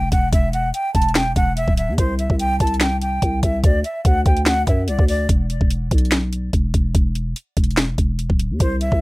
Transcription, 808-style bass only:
Already playing: E1
0.12 E1
0.33 E1
0.95 E1
1.36 E1
1.68 D1
1.88 E2
1.98 C2
2.30 C2
2.60 C2
3.22 C2
3.43 C2
3.64 D2
4.05 D2
4.26 D2
4.67 F#2
4.88 C2
4.99 D2
5.29 E1
5.61 E1
5.91 B1
6.53 E1
6.74 E1
6.95 E1
7.57 E1
7.98 E1
8.30 D1
8.50 E2
8.60 C2
8.92 C2

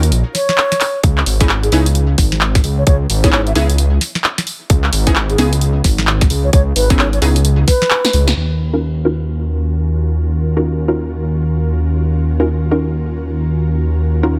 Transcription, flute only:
0.35 C#5
1.63 G#4
2.78 C#5
2.87 C#5
3.24 C#5
3.33 C#5
3.47 E5
3.56 E5
5.30 G#4
6.44 C#5
6.53 C#5
6.76 B4
6.99 C#5
7.13 C#5
7.67 B4

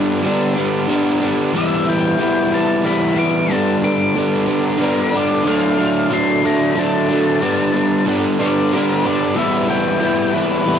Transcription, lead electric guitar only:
1.57 E5
1.89 G5
2.54 A5
2.86 B5
3.19 D6
3.52 A5
3.84 D6
4.84 A#4
5.17 D5
5.48 F5
6.13 C6
6.46 A#5
6.79 A5
8.41 D5
8.74 A#4
9.05 D5
9.37 E5
9.70 G5
10.34 B4

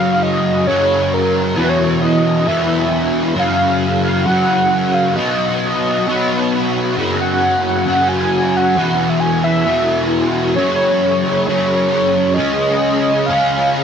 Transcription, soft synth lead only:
Already playing: F5
0.23 D#5
0.67 C#5
1.14 A#4
1.59 B4
1.69 C#5
2.02 D#5
2.48 E5
3.39 F5
4.05 F5
4.25 F#5
4.94 F5
5.16 D#5
5.62 D#5
7.20 F#5
7.68 F#5
8.09 G#5
8.57 F#5
9.09 E5
9.20 G#5
9.44 E5
10.55 C#5
10.76 C#5
11.44 C#5
12.34 D#5
13.26 F5

